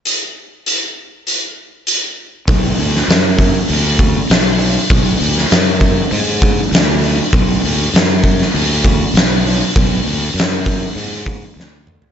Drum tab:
HH |x---x---x---x---|o-o-o-o-o-o-o-o-|o-o-o-o-o-o-o-o-|o-o-o-o-o-o-o-o-|
SD |----------------|---oo-------o---|---oo-------o---|----o--o----o---|
T2 |----------------|----------------|----------------|----------------|
FT |----------------|----------------|----------------|----------------|
BD |----------------|o-----o---o-----|o-----o---o-----|o-----o---o-----|

HH |o-o-o-o-o-o-----|
SD |----o-------o---|
T2 |--------------o-|
FT |---------------o|
BD |o-----o---o-----|